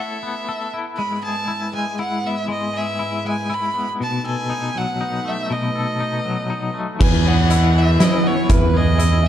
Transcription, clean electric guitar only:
0.00 0.73 A3 soft
0.00 0.73 E4 soft
0.00 0.47 A4 soft
0.00 0.99 C#5 soft
0.23 2.24 B3 soft
0.49 0.99 A4 soft
0.74 1.47 E4 soft
0.98 1.72 G#3 soft
1.23 2.49 G#4 soft
1.48 1.98 E4 soft
1.73 2.47 G#3 soft
1.99 2.98 E4 soft
2.24 3.74 B3 soft
2.48 3.24 G#3 soft
2.73 3.99 G#4 soft
2.99 3.48 E4 soft
3.25 4.00 G#3 soft
3.50 4.00 E4 soft
3.74 4.28 B3 soft
4.00 5.26 B2 medium
4.25 5.50 A4 soft
4.50 4.99 D#4 soft
4.75 6.00 F#3 soft
5.01 5.99 D#4 medium
5.25 6.50 A3 soft
5.50 6.75 B2 soft
5.75 7.00 A4 medium
6.00 6.49 D#4 soft
6.25 6.99 F#3 soft
6.50 7.00 D#4 medium
6.74 7.00 A3 soft
7.00 7.75 E3 medium
7.25 8.50 G#4 medium
7.51 8.00 E4 medium
7.76 8.49 E3 medium
8.00 8.98 E4 medium
8.24 9.28 B3 medium
8.49 9.23 E3 medium
8.74 9.28 G#4 medium
8.99 9.28 E4 medium
9.23 9.28 E3 medium

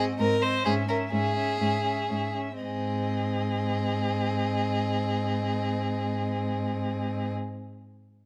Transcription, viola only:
0.00 0.18 C4 soft
0.19 0.41 C4 soft
0.42 0.64 C4 soft
0.65 0.88 C#4 soft
0.89 1.11 C#4 soft
1.13 1.36 C#4 soft
1.36 1.60 C#4 soft
1.61 1.83 C#4 soft
1.84 2.09 C#4 soft
2.09 2.35 C#4 soft
2.36 2.61 C#4 soft
2.62 7.30 C4 soft

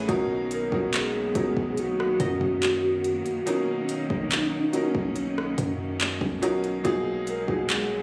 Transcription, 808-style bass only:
0.09 0.70 B1 loud
0.72 1.33 B1 loud
1.36 2.17 B1 loud
2.20 3.22 F#2 loud
4.10 4.51 B1 loud
4.95 5.56 B1 loud
5.58 6.19 F#2 loud
6.21 6.82 B1 loud
6.85 7.46 B1 loud
7.48 8.03 B1 loud

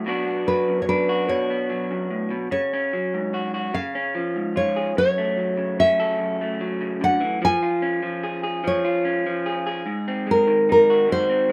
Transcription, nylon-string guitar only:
0.48 0.81 B4 medium
0.82 0.88 C#5 soft
0.89 1.29 B4 medium
1.29 2.47 C#5 medium
2.52 3.70 C#5 medium
3.74 4.57 F5 medium
4.57 4.97 C#5 medium
4.98 5.79 C#5 medium
5.80 6.98 E5 medium
7.04 7.44 F#5 medium
7.45 8.67 G#5 medium
8.67 9.54 C#5 medium
10.31 10.71 A#4 medium
10.72 11.08 A#4 medium
11.12 11.52 C5 medium

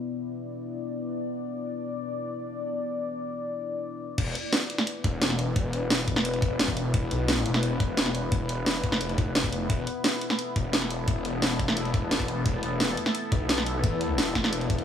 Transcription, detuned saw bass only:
4.18 4.34 E1 loud
5.04 6.41 E1 loud
6.42 6.58 E1 loud
6.60 6.93 E1 medium
6.94 7.10 E1 loud
7.11 7.44 B1 loud
7.46 8.82 E1 medium
8.84 9.68 F1 loud
9.70 9.86 E1 loud
10.56 11.93 E1 loud
11.94 12.10 E1 medium
12.11 12.44 E1 loud
12.46 12.62 E1 medium
12.63 12.96 E1 loud
13.32 13.82 B1 loud
13.84 14.17 E2 loud
14.18 14.84 E1 loud

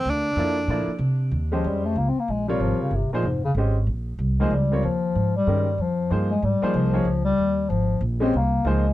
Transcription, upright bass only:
0.05 0.35 D2 medium
0.36 0.67 F2 medium
0.68 0.86 A#2 medium
0.87 muted upright bass stroke soft
0.99 1.31 C3 medium
1.31 1.63 D#2 medium
1.64 1.95 F2 medium
1.96 2.15 C#2 medium
2.15 muted upright bass stroke soft
2.28 2.59 A#1 medium
2.60 2.79 G#1 medium
2.80 muted upright bass stroke soft
2.91 3.10 G1 medium
3.10 muted upright bass stroke soft
3.22 3.54 F1 medium
3.55 3.86 G#1 medium
3.87 4.18 A#1 medium
4.19 4.50 C2 medium
4.51 4.82 C#2 medium
4.83 5.14 D#2 medium
5.15 5.46 G#2 medium
5.47 5.77 G2 medium
5.78 6.09 F2 medium
6.11 6.42 G2 medium
6.42 6.61 G#2 medium
6.62 muted upright bass stroke soft
6.74 7.04 C2 medium
7.05 7.37 C#2 medium
7.38 7.69 D#2 medium
7.70 8.00 G#1 medium
8.01 8.32 A#1 medium
8.34 8.64 C2 medium
8.65 8.93 C#2 medium

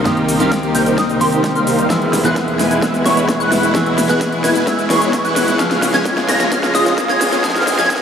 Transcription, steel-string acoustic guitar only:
0.05 0.37 D#3 medium
0.05 0.37 A#3 medium
0.05 0.38 C4 medium
0.05 0.38 G4 medium
0.39 1.18 D#3 loud
0.39 1.18 A#3 medium
0.39 1.18 C4 medium
0.39 1.19 G4 loud
1.20 1.87 D#3 medium
1.20 1.87 A#3 medium
1.20 1.88 C4 medium
1.20 1.88 G4 medium
1.89 2.22 E3 loud
1.89 2.22 G#3 medium
1.89 2.22 B3 medium
1.89 2.22 G#4 medium
2.24 3.71 E3 medium
2.24 3.72 G#3 medium
2.24 3.72 B3 medium
2.24 3.73 G#4 loud
3.74 4.06 E3 medium
3.74 4.07 G#3 medium
3.74 4.07 B3 medium
3.74 4.07 G#4 loud
4.08 4.87 E3 loud
4.08 4.87 G#3 medium
4.08 4.88 B3 medium
4.08 4.88 G#4 loud
4.89 5.56 E3 medium
4.89 5.56 G#3 medium
4.89 5.57 B3 medium
4.89 5.57 G#4 medium
5.59 5.91 F3 medium
5.59 5.91 G#3 medium
5.59 5.91 C#4 medium
5.59 5.92 G#4 loud
5.93 7.41 F3 medium
5.93 7.41 G#3 medium
5.93 7.41 C#4 medium
5.93 7.42 G#4 loud
7.43 7.76 F3 medium
7.43 7.76 G#3 medium
7.43 7.76 C#4 medium
7.43 7.76 G#4 loud
7.77 8.02 F3 loud
7.77 8.02 G#3 medium
7.77 8.02 C#4 medium
7.77 8.02 G#4 loud

